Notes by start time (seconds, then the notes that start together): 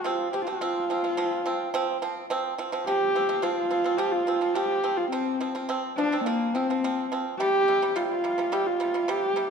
Already playing: F4
0.04 F3 C4
0.33 F3 C4 G4
0.47 F3 C4 F4
0.61 F3 C4
0.90 F3 C4
1.04 F3 C4
1.17 F3 C4
1.46 F3 C4
1.74 F3 C4
2.02 F3 C4
2.30 F3 C4
2.58 F3 C4
2.72 F3 C4
2.86 F3 C4 G4
3.15 F3 C4
3.29 F3 C4
3.42 F3 C4 F4
3.56 F4
3.70 F3 C4
3.84 F3 C4
3.97 F3 C4 G4
4.12 F4
4.27 F3 C4
4.41 F3 C4
4.54 F3 C4 G4
4.84 F3 C4
4.97 F4
5.11 F3 C4
5.40 F3 C4
5.55 F3 C4
5.69 F3 C4
5.97 F3 C4 D4
6.12 F3 C4
6.25 F3 A#3 C4
6.54 F3 C4
6.70 F3 C4
6.84 F3 C4
7.12 F3 C4
7.39 C3 G3 G4
7.68 C3 G3
7.82 C3 G3
7.96 C3 G3 F4
8.09 F4
8.24 C3 G3
8.38 C3 G3
8.52 C3 G3 G4
8.67 F4
8.80 C3 G3
8.94 C3 G3
9.08 C3 G3 G4
9.36 C3 G3